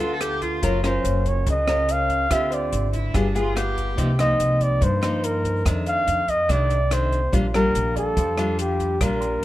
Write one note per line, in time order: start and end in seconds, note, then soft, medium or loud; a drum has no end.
0.00 0.59 D2 medium
0.00 0.60 D3 medium
0.00 0.59 B3 medium
0.00 0.14 F4 loud
0.00 0.59 F4 medium
0.00 0.61 A4 medium
0.00 0.59 A4 medium
0.14 0.22 A4 medium
0.20 0.43 G4 medium
0.20 cross-stick medium
0.20 closed hi-hat soft
0.41 0.73 F4 medium
0.41 kick soft
0.41 closed hi-hat soft
0.62 1.02 F#1 medium
0.62 1.44 F#3 medium
0.62 0.80 C#4 medium
0.62 0.80 F4 medium
0.62 0.81 A#4 medium
0.62 kick medium
0.62 closed hi-hat soft
0.83 1.64 C#4 medium
0.83 1.64 F4 medium
0.83 1.64 A#4 medium
0.83 1.30 C5 medium
0.83 cross-stick medium
0.83 closed hi-hat soft
1.04 1.43 F#1 medium
1.04 closed hi-hat soft
1.26 1.48 C#5 medium
1.26 kick soft
1.26 closed hi-hat soft
1.47 2.26 C#2 medium
1.47 2.28 C#3 medium
1.47 1.93 D#5 medium
1.47 kick soft
1.47 closed hi-hat soft
1.67 2.27 C#4 medium
1.67 2.27 F4 medium
1.67 2.27 A#4 medium
1.67 cross-stick medium
1.67 closed hi-hat soft
1.88 2.27 A#4 soft
1.88 2.34 F5 loud
1.88 closed hi-hat soft
2.10 kick soft
2.10 closed hi-hat soft
2.30 2.69 D2 medium
2.30 3.12 D3 medium
2.30 2.87 C4 medium
2.30 2.87 F4 medium
2.30 2.87 G4 medium
2.30 2.55 E5 medium
2.30 kick medium
2.30 cross-stick medium
2.30 closed hi-hat soft
2.50 3.10 C5 medium
2.50 2.94 D5 medium
2.50 closed hi-hat soft
2.73 3.11 G#1 medium
2.73 closed hi-hat soft
2.93 3.16 E4 medium
2.93 kick soft
2.93 closed hi-hat soft
3.14 3.94 G1 medium
3.14 3.96 G3 medium
3.14 3.26 B3 soft
3.14 3.36 D4 medium
3.14 3.26 F4 medium
3.14 3.27 G#4 medium
3.14 kick soft
3.14 cross-stick medium
3.14 closed hi-hat soft
3.35 3.52 B3 soft
3.35 3.57 F4 medium
3.35 3.53 F4 medium
3.35 3.53 G#4 medium
3.35 closed hi-hat soft
3.56 3.96 B3 medium
3.56 3.96 F4 medium
3.56 4.08 G4 medium
3.56 cross-stick medium
3.56 closed hi-hat soft
3.77 kick soft
3.77 closed hi-hat soft
3.97 4.37 C2 medium
3.97 4.79 C3 medium
3.97 4.10 F3 medium
3.97 4.10 A#3 medium
3.97 4.10 D#4 medium
3.97 kick medium
3.97 closed hi-hat soft
4.19 4.99 F3 medium
4.19 4.99 A#3 medium
4.19 5.00 D#4 medium
4.19 4.64 D#5 medium
4.19 cross-stick medium
4.19 closed hi-hat soft
4.39 4.78 C2 medium
4.39 closed hi-hat soft
4.61 4.85 D5 medium
4.61 kick soft
4.61 closed hi-hat soft
4.81 5.63 G2 medium
4.81 5.61 G2 medium
4.81 5.26 C5 medium
4.81 kick medium
4.81 closed hi-hat soft
5.01 5.61 F3 medium
5.01 5.62 A#3 soft
5.01 5.62 D#4 medium
5.01 cross-stick medium
5.01 closed hi-hat soft
5.24 5.66 A#4 medium
5.24 closed hi-hat soft
5.45 kick soft
5.45 closed hi-hat soft
5.65 6.47 F2 medium
5.65 6.04 F2 medium
5.65 6.22 D#3 medium
5.65 6.22 A3 medium
5.65 6.22 D4 medium
5.65 kick medium
5.65 cross-stick medium
5.65 closed hi-hat soft
5.86 6.31 F5 loud
5.86 closed hi-hat soft
6.07 6.46 F2 medium
6.07 closed hi-hat soft
6.28 6.52 D#5 medium
6.28 kick soft
6.28 closed hi-hat soft
6.49 7.29 C2 medium
6.49 7.31 C3 medium
6.49 6.76 D#3 medium
6.49 6.76 A3 medium
6.49 6.76 D4 medium
6.49 6.95 D5 medium
6.49 kick medium
6.49 cross-stick soft
6.49 closed hi-hat soft
6.70 closed hi-hat soft
6.91 7.19 D#3 medium
6.91 7.19 A3 medium
6.91 7.19 D4 medium
6.91 7.34 C5 medium
6.91 cross-stick medium
6.91 closed hi-hat soft
7.12 kick soft
7.12 closed hi-hat soft
7.32 7.72 A#1 medium
7.32 8.14 A#2 medium
7.32 7.45 G3 medium
7.32 7.45 D4 medium
7.32 7.45 F4 medium
7.32 kick medium
7.32 closed hi-hat soft
7.54 8.34 G3 medium
7.54 8.35 D4 medium
7.54 8.35 F4 medium
7.54 7.94 A#4 medium
7.54 cross-stick medium
7.54 closed hi-hat soft
7.75 8.14 A#1 medium
7.75 closed hi-hat soft
7.96 8.56 A4 medium
7.96 8.78 D5 medium
7.96 kick soft
7.96 closed hi-hat soft
8.17 8.97 F2 medium
8.17 8.98 F3 medium
8.17 kick medium
8.17 closed hi-hat soft
8.37 8.97 G3 medium
8.37 8.97 D4 medium
8.37 8.97 F4 medium
8.37 cross-stick medium
8.37 closed hi-hat soft
8.59 9.04 G4 medium
8.59 closed hi-hat soft
8.80 kick soft
8.80 closed hi-hat soft
9.00 9.40 A#1 medium
9.00 9.45 A#2 medium
9.00 9.45 G3 medium
9.00 9.45 D4 medium
9.00 9.45 F4 medium
9.00 9.45 A#4 medium
9.00 kick medium
9.00 cross-stick medium
9.00 closed hi-hat soft
9.21 9.45 C6 soft
9.21 closed hi-hat soft